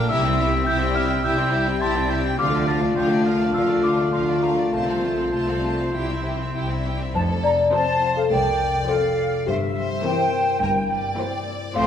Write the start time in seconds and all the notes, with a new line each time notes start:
Already playing: A#2 G3 A#3 D4
0.09 C2 C3 G3 E4 G4 E5 E6
0.24 C4 E4 G5
0.29 G3
0.38 E4 G4 E5
0.47 G4
0.52 C4 E4 G5
0.66 C2 C3 C4 E4 G4 E5 G6
0.80 C4 E4 G5
0.86 D4
0.95 E4 G4 E5 F6
1.05 C4
1.10 C4 E4 G5
1.23 C2 C3 E4 G4 E5 G5 E6
1.38 C4 E4 G5
1.43 G3
1.52 E4 G4 E5
1.62 G4
1.66 C4 E4 G5
1.81 C2 C3 C4 E4 G4 E5 A5 C6
1.95 C4 E4 G5
2.01 D4
2.09 E4 G4 E5 G5
2.20 C4
2.24 C4 E4 G5
2.38 D2 D3 F3 A3 F4 F5 D6
2.53 A3 D4 D5
2.58 F3
2.67 F3 F4 F5 A5
2.77 D4
2.82 A3 D4 D5
2.96 D2 D3 F3 A3 F4 F5 G5
3.10 A3 D4 D5
3.15 A#3
3.24 F3 F4 F5
3.35 A3
3.40 A3 D4 D5
3.54 D2 D3 F3 F4 F5 E6
3.68 A3 D4 D5
3.74 F3
3.83 F3 F4 F5 D6
3.93 D4
3.97 A3 D4 D5
4.12 D2 D3 F3 A3 F4 F5 C6
4.28 A3 D4 D5
4.33 A#3
4.42 F3 F4 F5 A#5
4.53 A3 D4
4.57 A3 D5
4.72 C2 C3 A3 F4 C5 A5
4.87 C4 A4 F5
4.94 F3
5.03 A3 F4 A5
5.14 F4
5.19 C4 A4 F5
5.33 C2 C3 A3 C4 F4 A5
5.49 C4 A4 F5
5.54 D4
5.64 A3 F4 A5
5.74 C4
5.79 C4 A4 F5
5.94 C2 C3 G3 E4 G4 G5
6.09 C4 E4 E5
6.15 G3
6.25 E4 G4 G5
6.35 E4
6.40 C4 E4 E5
6.55 C2 C3 C4 E4 G4 G5
6.69 C4 E4 E5
6.75 D4
6.85 E4 G4 G5
6.95 C4
7.00 C4 E4 E5
7.15 F1 F2 A4 C5 A5
7.44 C3 D5 A#5
7.72 F3 C4 C5 A5
8.02 F4
8.17 A4 F5
8.31 C2 F2 A#4 D5 G5
8.60 C3
8.88 F3 C4 A4 C5 F5
9.18 F4
9.46 G1 G2 G4 C5 E5
9.76 G3 C5
10.04 E3 A#3 C4 A#4 C5 G5
10.33 E4
10.62 G1 G2 A#4
10.90 G3 D5
11.18 E3 A#3 C4 C5
11.47 E4
11.74 A1 A2 F3 A3 C4 C5 F5 C6